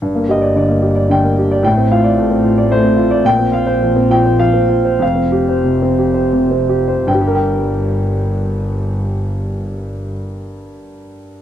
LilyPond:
<<
  \new Staff \with { instrumentName = "Grand piano" } { \time 3/4 \key g \minor \tempo 4 = 94 << { r8 ees''8 d''4 g''4 | g''8 f''4. c''4 | g''8 f''4 g''8 f''4 | f''2~ f''8 r8 |
<g, g g' bes' g''>2.~ | <g, g g' bes' g''>2. | } \\ { g,16 bes16 g'16 d''16 d16 bes16 g'16 d''16 d16 bes16 g'16 d''16 | a,16 c'16 f'16 d''16 a16 c'16 f'16 d''16 a16 c'16 f'16 d''16 | bes,16 c'16 f'16 c''16 f16 c'16 f'16 c''16 f16 c'16 f'16 c''16 | f,16 c'16 g'16 c''16 c16 c'16 g'16 c''16 c16 c'16 g'16 c''16 |
r2. | r2. | } >> }
  \new Staff \with { instrumentName = "Double bass" } { \clef bass \time 3/4 \key g \minor g,,2. | a,,2. | bes,,2. | f,,2. |
g,,2.~ | g,,2. | }
>>